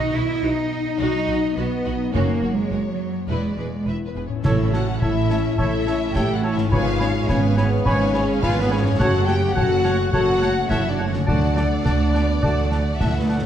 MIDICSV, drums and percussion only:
0, 0, Header, 1, 2, 480
1, 0, Start_track
1, 0, Tempo, 571973
1, 1798, Time_signature, 4, 2, 24, 8
1, 11295, End_track
2, 0, Start_track
2, 0, Title_t, "Drums"
2, 3732, Note_on_c, 9, 35, 75
2, 3732, Note_on_c, 9, 38, 62
2, 3732, Note_on_c, 9, 49, 47
2, 3816, Note_off_c, 9, 35, 0
2, 3816, Note_off_c, 9, 38, 0
2, 3816, Note_off_c, 9, 49, 0
2, 3975, Note_on_c, 9, 38, 51
2, 4058, Note_off_c, 9, 38, 0
2, 4212, Note_on_c, 9, 35, 64
2, 4296, Note_off_c, 9, 35, 0
2, 4450, Note_on_c, 9, 38, 46
2, 4534, Note_off_c, 9, 38, 0
2, 4688, Note_on_c, 9, 35, 68
2, 4771, Note_off_c, 9, 35, 0
2, 4926, Note_on_c, 9, 38, 48
2, 5010, Note_off_c, 9, 38, 0
2, 5166, Note_on_c, 9, 35, 79
2, 5166, Note_on_c, 9, 38, 70
2, 5250, Note_off_c, 9, 35, 0
2, 5250, Note_off_c, 9, 38, 0
2, 5522, Note_on_c, 9, 38, 53
2, 5606, Note_off_c, 9, 38, 0
2, 5644, Note_on_c, 9, 35, 77
2, 5728, Note_off_c, 9, 35, 0
2, 5882, Note_on_c, 9, 38, 52
2, 5966, Note_off_c, 9, 38, 0
2, 6121, Note_on_c, 9, 35, 77
2, 6121, Note_on_c, 9, 38, 68
2, 6205, Note_off_c, 9, 35, 0
2, 6205, Note_off_c, 9, 38, 0
2, 6358, Note_on_c, 9, 38, 53
2, 6442, Note_off_c, 9, 38, 0
2, 6595, Note_on_c, 9, 35, 73
2, 6679, Note_off_c, 9, 35, 0
2, 6831, Note_on_c, 9, 38, 54
2, 6915, Note_off_c, 9, 38, 0
2, 7073, Note_on_c, 9, 35, 73
2, 7073, Note_on_c, 9, 38, 63
2, 7157, Note_off_c, 9, 35, 0
2, 7157, Note_off_c, 9, 38, 0
2, 7552, Note_on_c, 9, 35, 75
2, 7552, Note_on_c, 9, 38, 81
2, 7636, Note_off_c, 9, 35, 0
2, 7636, Note_off_c, 9, 38, 0
2, 7790, Note_on_c, 9, 38, 54
2, 7874, Note_off_c, 9, 38, 0
2, 8028, Note_on_c, 9, 35, 76
2, 8112, Note_off_c, 9, 35, 0
2, 8266, Note_on_c, 9, 38, 56
2, 8350, Note_off_c, 9, 38, 0
2, 8504, Note_on_c, 9, 35, 70
2, 8588, Note_off_c, 9, 35, 0
2, 8746, Note_on_c, 9, 38, 53
2, 8830, Note_off_c, 9, 38, 0
2, 8985, Note_on_c, 9, 35, 74
2, 8985, Note_on_c, 9, 38, 76
2, 9069, Note_off_c, 9, 35, 0
2, 9069, Note_off_c, 9, 38, 0
2, 9345, Note_on_c, 9, 38, 48
2, 9429, Note_off_c, 9, 38, 0
2, 9467, Note_on_c, 9, 35, 82
2, 9550, Note_off_c, 9, 35, 0
2, 9709, Note_on_c, 9, 38, 55
2, 9793, Note_off_c, 9, 38, 0
2, 9949, Note_on_c, 9, 35, 68
2, 9949, Note_on_c, 9, 38, 66
2, 10033, Note_off_c, 9, 35, 0
2, 10033, Note_off_c, 9, 38, 0
2, 10193, Note_on_c, 9, 38, 52
2, 10277, Note_off_c, 9, 38, 0
2, 10430, Note_on_c, 9, 35, 69
2, 10514, Note_off_c, 9, 35, 0
2, 10672, Note_on_c, 9, 38, 52
2, 10756, Note_off_c, 9, 38, 0
2, 10914, Note_on_c, 9, 35, 78
2, 10914, Note_on_c, 9, 38, 62
2, 10998, Note_off_c, 9, 35, 0
2, 10998, Note_off_c, 9, 38, 0
2, 11295, End_track
0, 0, End_of_file